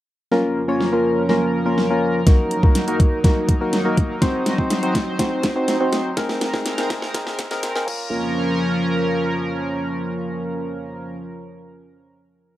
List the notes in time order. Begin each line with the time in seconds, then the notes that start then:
0.31 F3 A#3 C#4 F4 A#4, snare
0.68 A#3 C#4 F4 C#5
0.80 snare
0.92 A#3 C#4 F4 A#4
1.29 A#3 C#4 F4 A#4, snare
1.66 A#3 C#4 F4 A#4
1.78 snare
1.90 A#3 C#4 F4 A#4
2.27 F#3 A#3 D#4 F#4 A#4, kick, snare, closed hi-hat
2.51 closed hi-hat
2.63 A#3 D#4 F#4 A#4, kick
2.75 snare, closed hi-hat
2.88 A#3 D#4 F#4 A#4, closed hi-hat
3.00 kick, closed hi-hat
3.24 A#3 D#4 F#4 A#4, kick, snare, closed hi-hat
3.49 kick, closed hi-hat
3.61 A#3 D#4 F#4 A#4
3.73 snare, closed hi-hat
3.85 A#3 D#4 F#4 A#4
3.97 kick, closed hi-hat
4.21 C4 D#4 F#4 C5, kick, snare, closed hi-hat
4.46 snare, closed hi-hat
4.58 C4 D#4 F#4 C5, kick
4.70 snare, closed hi-hat
4.83 C4 D#4 F#4 C5, closed hi-hat
4.95 kick, snare, closed hi-hat
5.19 C4 D#4 F#4 C5, kick, snare, closed hi-hat
5.43 kick, snare, closed hi-hat
5.56 C4 D#4 F#4 C5
5.68 snare, closed hi-hat
5.80 C4 D#4 F#4 C5
5.93 snare, closed hi-hat
6.17 G#3 C4 D#4 G#4 A#4, kick, snare, closed hi-hat
6.29 snare
6.41 snare, closed hi-hat
6.53 C4 D#4 G#4 A#4, kick, snare
6.66 snare, closed hi-hat
6.78 C4 D#4 G#4 A#4, snare, closed hi-hat
6.90 kick, snare, closed hi-hat
7.02 snare
7.14 C4 D#4 G#4 A#4, kick, snare, closed hi-hat
7.27 snare
7.39 kick, snare, closed hi-hat
7.51 C4 D#4 G#4 A#4, snare, closed hi-hat
7.63 snare, closed hi-hat
7.75 C4 D#4 G#4 A#4, snare
7.86 F3 A#3 C#4 F4 A#4, kick, crash
7.90 A#4